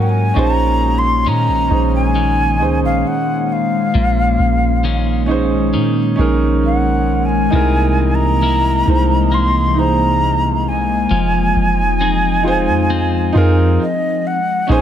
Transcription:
Already playing: G#2 F#3 A#3 C#4 D#4 F#4 A#4 G#5 C#6
0.02 G5
0.09 G#5
0.34 A#1 A#2 G#3 A#3 C#4 D#4 G#4
0.38 C5 A#5
0.98 C6
1.26 A#2 D#3 G#3 C#4 A#5
1.48 A#1
1.68 A#1 C#4 D#4 G#4
1.73 C5
1.95 G#5
2.15 D#3
2.58 C#2 C#4 D#4 G#4
2.62 C5
2.83 A#1 F5
3.07 F#5
3.52 F5
3.95 A#1 A#2
4.39 A#1
4.84 D#3 G#3 C#4
5.26 C#4 D#4 G#4
5.31 C5
5.74 A#2 D#3
6.16 A#1 C#4 D#4 G#4
6.21 A#4
6.65 F#5
7.25 G#5
7.50 C2 C3 E3 D#4 E4 G#4 D#5
7.55 A#4
8.15 A#5
8.42 A#3 E4 G#4
8.85 C2 D#4 E4 G#4
8.89 C5
9.32 A#3 C6
9.74 D#4 E4 G#4
9.79 C5 A#5
10.68 G#5
11.11 F1 F3 D#4
11.56 F1
12.01 C4 D#4 G#4
12.43 D#4 F4 G#4
12.48 C5
12.68 F2
12.90 C4
13.33 F2 D#4 F4 G#4
13.37 A#4
13.82 D#5
14.26 F#5
14.67 A#1 A#2 G#3 A#3 C#4 D#4 G#4
14.71 C5 G#5

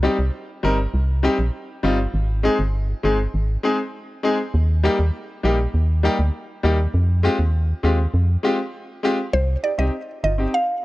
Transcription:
0.03 G3 C4 D#4 G4
0.19 C2
0.63 G1 G3 C4 D#4 A#4
0.94 C2
1.23 G3 C4 D#4 G4
1.39 A#1
1.83 G1 G3 C4 D#4 F4
2.14 G#1
2.43 G#3 C4 D#4 G#4
2.59 G1
3.03 G1 G#3 C4 D#4 G#4
3.34 G#1
3.63 G#3 C4 D#4 G#4
4.23 G#3 C4 D#4 G#4
4.54 D#2
4.83 G3 A#3 D#4 G4
4.99 D#2
5.43 A#1 G3 A#3 D#4 G4
5.74 D#2
6.03 G3 A#3 D#4 G4
6.19 D2
6.63 D#2 G3 A#3 D#4 G4
6.94 F2
7.23 G#3 C4 F4 G4
7.39 D#2
7.83 D#2 G#3 C4 F4 G4
8.14 F2
8.43 G#3 C4 F4 G4
9.03 G#3 C4 F4 G4
9.34 C2 C5
9.63 D#4 G4 D5
9.78 C2 C4 D#4 G4 D#5
10.23 G1 D#4 F4 D#5
10.38 C4 D#4 G4
10.54 F5

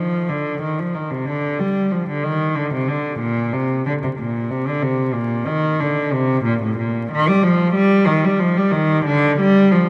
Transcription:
Already playing: F3
0.29 D3
0.61 D#3
0.79 F3
0.95 D#3
1.11 C3
1.26 D3
1.59 G3
1.91 F3
2.09 D3
2.23 D#3
2.56 D3
2.73 C3
2.88 D3
3.20 A#2
3.53 C3
3.86 D3
4.03 C3
4.19 A#2
4.50 C3
4.68 D3
4.83 C3
5.14 A#2
5.46 D#3
5.80 D3
6.12 C3
6.44 A#2
6.63 A2
6.78 A#2
7.11 D#3
7.28 G3
7.43 F3
7.75 G3
8.07 D#3
8.24 G3
8.39 F3
8.57 G3
8.72 D#3
9.05 D3
9.40 G3
9.72 F3

